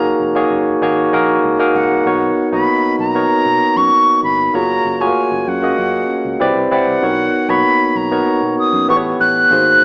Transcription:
Already playing: fingered electric bass F#1, tine electric piano A#3 D#4 F#4 G#4 A#4 C#5, flute A#5
0.19 fingered electric bass F1
0.35 tine electric piano A#3 D#4 F#4 G#4 C#5
0.51 fingered electric bass F#1
0.81 fingered electric bass G#1, tine electric piano A#3 D#4 F#4 G#4 C#5
1.13 fingered electric bass A#1, tine electric piano A#3 D#4 F#4 G#4 A#4
1.44 fingered electric bass C#2
1.59 tine electric piano A#3 D#4 F#4 G#4 A#4
1.75 fingered electric bass C#2, flute F#5
1.90 fingered electric bass C2
2.05 fingered electric bass B1, tine electric piano B3 D#4 F#4 A#4 C#5
2.52 fingered electric bass B1, tine electric piano A#3 B3 D#4 F#4 D#5, flute B5
2.99 fingered electric bass B1, flute A#5
3.15 tine electric piano B3 D#4 F#4 A#4 C#5
3.30 muted fingered electric bass stroke
3.45 fingered electric bass B2
3.76 fingered electric bass F#2, flute C#6
4.23 fingered electric bass G1, flute B5
4.54 fingered electric bass F#1, tine electric piano A#3 F4 F#4 G#4 C#5, flute A#5
4.85 fingered electric bass F#1
5.00 tine electric piano A3 F4 F#4 G#4 C#5, flute G#5
5.07 tine electric piano A#3
5.32 fingered electric bass F#1
5.47 fingered electric bass F#2, flute F#5
5.62 tine electric piano A#3 C#4 F#4 G#4 D#5
5.78 fingered electric bass F#2
6.25 fingered electric bass C#2
6.40 fingered electric bass C2, tine electric piano C4 E4 G4 B4 D5
6.56 fingered electric bass C2
6.71 fingered electric bass C#2, tine electric piano C4 E4 G4 B4 D5, flute F#5
6.87 fingered electric bass C2
7.02 fingered electric bass B1, tine electric piano B3 D#4 F#4 A#4 C#5
7.49 fingered electric bass B1, tine electric piano A#3 B3 D#4 F#4 C#5, flute B5
7.95 fingered electric bass B1, flute A#5
8.12 tine electric piano B3 D#4 F#4 A#4 C#5
8.27 muted fingered electric bass stroke
8.42 fingered electric bass B2
8.59 flute D#6
8.73 fingered electric bass F#2
8.88 fingered electric bass A1, tine electric piano B3 E4 G4 A4 B4, flute C#6
8.96 tine electric piano C#5
9.20 fingered electric bass A1, flute F#6
9.51 fingered electric bass G#1, tine electric piano A#3 D#4 F#4 G#4 C5
9.81 fingered electric bass G#1

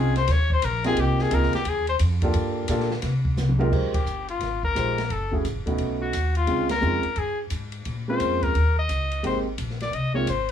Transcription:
Already playing: upright bass C2, upright piano C4 C#4 D#4 F4 G#4, trumpet G#4
0.16 trumpet C5, snare, ride
0.28 upright bass D#2, trumpet C#5, kick, snare, ride
0.50 trumpet C5, kick
0.62 upright bass A#1, trumpet A#4, kick, hi-hat pedal, ride
0.84 upright piano A#3 C4 D#4 F4 G4, trumpet G#4, snare, ride
0.97 upright bass C2, trumpet G4, kick, ride
1.19 trumpet G#4, snare
1.30 upright bass C#2, upright piano A#3 C4 D#4 F4 G#4, trumpet A#4, kick, hi-hat pedal, ride
1.43 snare
1.53 trumpet G4, muted upright bass stroke, snare, ride
1.65 upright bass D#2, trumpet G#4, kick, ride
1.87 trumpet C5, ride
1.99 upright bass F2, kick, hi-hat pedal, ride
2.22 upright piano A#3 D4 F4 G4 A4, kick, ride
2.34 upright bass G2, ride
2.68 upright bass A#2, upright piano A#3 D4 F4 G4 A4, kick, hi-hat pedal, ride
2.80 snare
2.91 snare
3.02 upright bass C3, kick, snare, ride
3.25 kick
3.37 upright bass C2, snare, hi-hat pedal
3.49 high tom
3.59 upright piano G#3 D#4 F4 G4 A#4, high tom
3.71 upright bass F1, upright piano G#3 D#4 F4 G4 C5, kick, crash
3.94 trumpet G4, kick, ride
4.06 upright bass G1, hi-hat pedal
4.28 trumpet F4, ride
4.41 upright bass G#1, kick, snare, ride
4.63 trumpet A#4, kick
4.75 upright bass A#1, upright piano G#3 D#4 F4 G4 C5, kick, hi-hat pedal, ride
4.98 snare, ride
5.10 upright bass F#1, trumpet A4, kick, ride
5.31 upright piano A3 C#4 E4 F#4 G#4, kick
5.45 upright bass A1, kick, hi-hat pedal, ride
5.56 upright bass F#1
5.66 upright bass E1, upright piano A3 B3 C#4 D#4 F#4, kick, ride
5.78 upright bass B1, kick, ride
6.02 trumpet F#4
6.13 upright bass D#2, kick, hi-hat pedal, ride
6.35 trumpet F4, ride
6.47 upright bass C#2, upright piano G#3 C4 C#4 D#4 F4, kick, ride
6.69 trumpet A#4, snare, ride
6.81 upright bass F2, upright piano G#3 C4 C#4 D#4 F4, hi-hat pedal
7.03 muted upright bass stroke, ride
7.16 upright bass G2, trumpet G#4, kick, ride
7.50 upright bass G#2, kick, hi-hat pedal, ride
7.72 ride
7.85 upright bass A#2, kick, ride
8.08 upright piano G#3 A#3 C4 C#4 F4, trumpet C5
8.20 upright bass F2, kick, hi-hat pedal, ride
8.43 trumpet A#4, kick, ride
8.55 upright bass D#2, kick, ride
8.79 trumpet D#5
8.89 upright bass C#2, kick, hi-hat pedal, ride
9.11 ride
9.23 upright bass G#1, upright piano G#3 A#3 C4 D#4 G4, trumpet C5, kick, ride
9.58 upright bass A#1, kick, hi-hat pedal, ride
9.70 snare
9.80 trumpet D5, snare, ride
9.93 upright bass C2, trumpet D#5, kick, ride
10.14 upright piano G#3 A#3 C4 D#4 F4, trumpet C#5
10.27 upright bass G#1, trumpet C5, kick, hi-hat pedal, ride

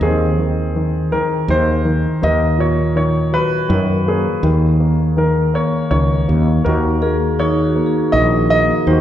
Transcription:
0.01 fretless electric bass D#2, grand piano D#3 C4 G#4
0.39 grand piano D#3
0.76 grand piano D#3
1.12 grand piano D#3 A#4
1.48 fretless electric bass D#2, grand piano D#3 C5
1.85 grand piano D#3
2.22 fretless electric bass D#2, grand piano D#3 A#4 D#5
2.58 grand piano A#2 C#5
2.96 grand piano D#3 C#5
3.32 grand piano F#3 B4
3.69 fretless electric bass F#2, grand piano D#3
4.06 grand piano A#3 G#4
4.10 grand piano C#4
4.43 fretless electric bass D#2, grand piano D#3
4.80 grand piano A#3
5.17 grand piano D#3 A#4
5.54 grand piano A#3 C#5
5.91 fretless electric bass C#2, grand piano D#3 C#5
6.28 fretless electric bass D#2, grand piano A#3
6.64 fretless electric bass D#2, grand piano D#3 A#4
6.69 grand piano F#4
7.02 grand piano A#3 A#4, vibraphone G#4
7.39 grand piano D#3 C#5, vibraphone D#4
7.63 vibraphone F#4
7.75 grand piano A#3
7.86 vibraphone G#4
8.12 fretless electric bass A#1, grand piano D#3 D#5
8.50 grand piano A#3 D#5
8.87 fretless electric bass D#2, grand piano D#3 C5, vibraphone D#4
8.91 grand piano F#4

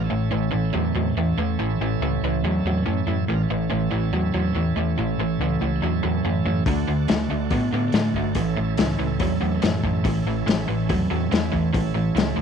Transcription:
0.04 tonewheel organ C#4 E4 A4
0.10 fingered electric bass A1, overdriven electric guitar A2 E3
0.31 fingered electric bass A1, overdriven electric guitar A2 E3
0.51 fingered electric bass A1, overdriven electric guitar A2 E3
0.74 fingered electric bass E2, overdriven electric guitar A2 F#3
0.95 fingered electric bass E2, overdriven electric guitar A2 F#3
1.16 fingered electric bass E2, overdriven electric guitar A2 E3
1.37 fingered electric bass E2, overdriven electric guitar A2 E3
1.59 fingered electric bass A1, overdriven electric guitar A2 E3
1.79 fingered electric bass A1, overdriven electric guitar A2 E3
2.00 fingered electric bass C#2, overdriven electric guitar A2 E3
2.22 fingered electric bass C#2, overdriven electric guitar A2 E3
2.42 fingered electric bass E2, overdriven electric guitar A2 F#3
2.64 fingered electric bass E2, overdriven electric guitar A2 F#3
2.86 fingered electric bass F#2, overdriven electric guitar A2 E3
3.07 fingered electric bass F#2, overdriven electric guitar A2 E3
3.28 fingered electric bass A1, overdriven electric guitar A2 E3, tonewheel organ D4 F4 A#4
3.43 tonewheel organ C#4 E4 A4
3.49 fingered electric bass A1, overdriven electric guitar A2 E3
3.70 fingered electric bass A1, overdriven electric guitar A2 E3
3.91 fingered electric bass A1, overdriven electric guitar A2 E3
4.12 fingered electric bass E2, overdriven electric guitar A2 F#3
4.34 fingered electric bass E2, overdriven electric guitar A2 F#3
4.55 fingered electric bass E2, overdriven electric guitar A2 E3
4.76 fingered electric bass E2, overdriven electric guitar A2 E3
4.98 fingered electric bass A1, overdriven electric guitar A2 E3
5.18 fingered electric bass A1, overdriven electric guitar A2 E3
5.39 fingered electric bass C#2, overdriven electric guitar A2 E3
5.61 fingered electric bass C#2, overdriven electric guitar A2 E3
5.82 fingered electric bass E2, overdriven electric guitar A2 F#3
6.03 fingered electric bass E2, overdriven electric guitar A2 F#3
6.25 fingered electric bass F#2, overdriven electric guitar A2 E3
6.46 fingered electric bass F#2, overdriven electric guitar A2 E3
6.66 fingered electric bass D2, overdriven electric guitar D3 A3, tonewheel organ D4 F#4 A4, kick, open hi-hat
6.88 fingered electric bass D2, overdriven electric guitar D3 A3
7.08 fingered electric bass D2, overdriven electric guitar D3 A3, snare, open hi-hat
7.30 fingered electric bass D2, overdriven electric guitar D3 A3
7.50 fingered electric bass A2, overdriven electric guitar D3 B3, kick, open hi-hat
7.72 fingered electric bass A2, overdriven electric guitar D3 B3
7.92 fingered electric bass A2, overdriven electric guitar D3 A3, snare, open hi-hat
8.14 fingered electric bass G1, overdriven electric guitar D3 A3, kick
8.35 fingered electric bass A1, overdriven electric guitar A2 E3, tonewheel organ C#4 E4 A4, kick, open hi-hat
8.57 fingered electric bass A1, overdriven electric guitar A2 E3
8.77 fingered electric bass C#2, overdriven electric guitar A2 E3, snare, open hi-hat
8.99 fingered electric bass C#2, overdriven electric guitar A2 E3
9.20 fingered electric bass E2, overdriven electric guitar A2 F#3, kick, open hi-hat
9.41 fingered electric bass E2, overdriven electric guitar A2 F#3
9.62 fingered electric bass F#2, overdriven electric guitar A2 E3, snare, open hi-hat
9.83 fingered electric bass F#2, overdriven electric guitar A2 E3, kick
10.04 fingered electric bass A1, overdriven electric guitar A2 E3, kick, open hi-hat
10.25 fingered electric bass A1, overdriven electric guitar A2 E3
10.46 fingered electric bass A1, overdriven electric guitar A2 E3, snare, open hi-hat
10.68 fingered electric bass A1, overdriven electric guitar A2 E3
10.89 fingered electric bass E2, overdriven electric guitar A2 F#3, kick, open hi-hat
11.10 fingered electric bass E2, overdriven electric guitar A2 F#3
11.32 fingered electric bass E2, overdriven electric guitar A2 E3, snare, open hi-hat
11.52 fingered electric bass E2, overdriven electric guitar A2 E3, kick
11.73 fingered electric bass A1, overdriven electric guitar A2 E3, tonewheel organ C#4 E4 A4, kick, open hi-hat
11.95 fingered electric bass A1, overdriven electric guitar A2 E3
12.14 fingered electric bass C#2, overdriven electric guitar A2 E3, snare, open hi-hat
12.36 fingered electric bass C#2, overdriven electric guitar A2 E3

